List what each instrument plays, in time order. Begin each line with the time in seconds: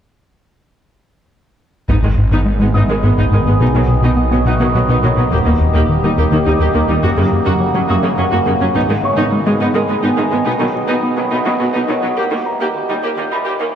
1.89 detuned saw bass G#1, analog synth bass G#2, cello section G#2, synth drone D#3 B3 G#4 D#5, viola section B3 D#4, taiko
2.04 analog synth bass G#2, cello section G#2, viola section D#3 G#3
2.18 analog synth bass G#2
2.31 analog synth bass G#2, cello section G#2, viola section B3 D#4
2.45 analog synth bass G#3
2.60 cello section G#2, analog synth bass G#3, viola section G#3 B3
2.74 analog synth bass G#2, cello section G#2, viola section B3 D#4, felt piano D#6
2.89 cello section G#2, viola section D#3 G#3, analog synth bass G#3
3.03 cello section G#2, analog synth bass G#2, viola section G#3 B3
3.17 analog synth bass G#2, cello section G#2, viola section B3 D#4, taiko
3.32 analog synth bass G#2, cello section G#2, viola section D#3 G#3
3.45 analog synth bass G#2, cello section G#2, viola section G#3 B3
3.60 detuned saw bass B1, analog synth bass B2, cello section B2, viola section B3 D#4, synth drone F#4
3.75 analog synth bass B2, cello section B2, viola section D#3 F#3
3.88 analog synth bass B2
4.02 analog synth bass B2, cello section B2, viola section B3 D#4
4.16 analog synth bass B3
4.31 cello section B2, viola section F#3 B3, analog synth bass B3
4.45 analog synth bass B2, cello section B2, viola section B3 D#4, felt piano F#5 F#6
4.60 cello section B2, viola section D#3 F#3, analog synth bass B3
4.74 analog synth bass B2, cello section B2, viola section F#3 B3
4.89 analog synth bass B2, cello section B2, viola section B3 D#4
5.03 cello section B2, analog synth bass B2, viola section D#3 F#3
5.17 analog synth bass B2, cello section B2, viola section F#3 B3
5.31 detuned saw bass D#1, analog synth bass D#2, cello section D#2, viola section A#3 G4, synth drone A#3 G4, taiko
5.46 analog synth bass D#2, cello section D#2, viola section D#3 A#3
5.60 analog synth bass D#2
5.74 analog synth bass D#2, cello section D#2, viola section A#3 G4
5.89 analog synth bass D#3
6.03 cello section D#2, analog synth bass D#3, viola section G3 D#4
6.17 analog synth bass D#2, cello section D#2, viola section A#3 G4
6.32 cello section D#2, analog synth bass D#3, viola section D#3 A#3
6.46 analog synth bass D#2, cello section D#2, viola section G3 D#4
6.59 analog synth bass D#2, cello section D#2, viola section A#3 G4
6.74 analog synth bass D#2, cello section D#2, viola section D#3 A#3
6.88 analog synth bass D#2, cello section D#2, viola section G3 D#4
7.03 detuned saw bass F#1, analog synth bass F#2, cello section F#2, synth drone C#3 F#4 F#5, viola section A#3 F#4
7.17 analog synth bass F#2, cello section F#2, viola section C#3 A#3
7.32 analog synth bass F#2
7.46 cello section F#2, analog synth bass F#2, viola section A#3 F#4
7.60 analog synth bass F#3
7.74 cello section F#2, analog synth bass F#3, viola section F#3 C#4
7.89 cello section F#2, analog synth bass F#2, viola section A#3 F#4, felt piano D#6
8.03 cello section F#2, viola section C#3 A#3, analog synth bass F#3
8.18 analog synth bass F#2, cello section F#2, viola section F#3 C#4
8.32 analog synth bass F#2, cello section F#2, viola section A#3 F#4
8.46 analog synth bass F#2, cello section F#2, viola section C#3 A#3
8.61 analog synth bass F#2, cello section F#2, viola section F#3 C#4
8.74 detuned saw bass G#1, analog synth bass G#2, cello section G#2, synth drone D#3 B3 G#4 D#5, viola section B3 D#4, taiko
8.89 analog synth bass G#2, cello section G#2, viola section D#3 G#3
9.03 analog synth bass G#2, felt piano C#5 C#6
9.17 analog synth bass G#2, cello section G#2, viola section B3 D#4
9.32 analog synth bass G#3
9.46 cello section G#2, analog synth bass G#3, viola section G#3 B3
9.60 cello section G#2, analog synth bass G#2, viola section B3 D#4
9.75 cello section G#2, viola section D#3 G#3, analog synth bass G#3
9.88 analog synth bass G#2, cello section G#2, viola section G#3 B3
10.03 analog synth bass G#2, cello section G#2, viola section B3 D#4
10.17 cello section G#2, analog synth bass G#2, viola section D#3 G#3, felt piano G#5
10.31 analog synth bass G#2, cello section G#2, viola section G#3 B3
10.45 detuned saw bass B1, analog synth bass B2, cello section B2, viola section B3 D#4, synth drone F#4
10.60 analog synth bass B2, cello section B2, viola section D#3 F#3
10.75 analog synth bass B2
10.88 cello section B2, analog synth bass B2, viola section B3 D#4
11.03 analog synth bass B3
11.17 cello section B2, viola section F#3 B3, analog synth bass B3
11.31 analog synth bass B2, cello section B2, viola section B3 D#4, felt piano B4 B5
11.45 cello section B2, viola section D#3 F#3, analog synth bass B3
11.59 analog synth bass B2, cello section B2, viola section F#3 B3
11.74 analog synth bass B2, cello section B2, viola section B3 D#4
11.88 cello section B2, analog synth bass B2, viola section D#3 F#3
12.02 analog synth bass B2, cello section B2, viola section F#3 B3
12.17 detuned saw bass D#1, analog synth bass D#2, cello section D#2, synth drone A#2 G4, viola section A#3 G4, taiko
12.31 analog synth bass D#2, cello section D#2, viola section D#3 A#3
12.46 analog synth bass D#2, felt piano A#5
12.59 analog synth bass D#2, cello section D#2, viola section A#3 G4
12.74 analog synth bass D#3
12.89 cello section D#2, analog synth bass D#3, viola section G3 D#4
13.02 analog synth bass D#2, cello section D#2, viola section A#3 G4
13.17 cello section D#2, analog synth bass D#3, viola section D#3 A#3
13.32 analog synth bass D#2, cello section D#2, viola section G3 D#4, felt piano B5
13.45 analog synth bass D#2, cello section D#2, viola section A#3 G4
13.60 analog synth bass D#2, cello section D#2, viola section D#3 A#3